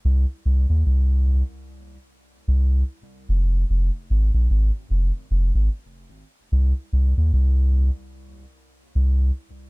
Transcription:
X:1
M:4/4
L:1/16
Q:"Swing 16ths" 1/4=74
K:Fm
V:1 name="Sub bass" clef=bass
C,, z C,, E,, C,,3 z4 z C,,2 z2 | F,,,2 F,,, z A,,, B,,, A,,, z F,,, z F,,, A,,, z4 | C,, z C,, E,, C,,3 z4 z C,,2 z2 |]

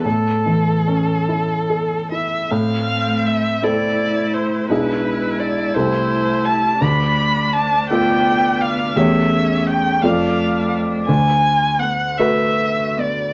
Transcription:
X:1
M:6/8
L:1/8
Q:3/8=55
K:A
V:1 name="Violin"
A4- A e | [K:Am] f2 e d2 c | B2 d c2 a | b2 a g2 f |
e2 g f2 z | [K:Bdor] g2 f e2 d |]
V:2 name="Grand piano"
A,, E, C E A E | [K:Am] A,,3 [CEA]3 | [B,,,DE^G]3 [C,,CEA]3 | D,,3 [A,FA]3 |
[E,,A,G^c]3 [F,,A,Fd]3 | [K:Bdor] D,,3 [A,FB]3 |]
V:3 name="Viola"
z6 | [K:Am] C3 E3 | E6 | D6 |
^C3 D3 | [K:Bdor] z2 B, z2 B, |]
V:4 name="Cello"
z6 | [K:Am] A,3 A,3 | ^G,3 A,3 | A,3 B,3 |
A,3 A,3 | [K:Bdor] z2 A, z2 A, |]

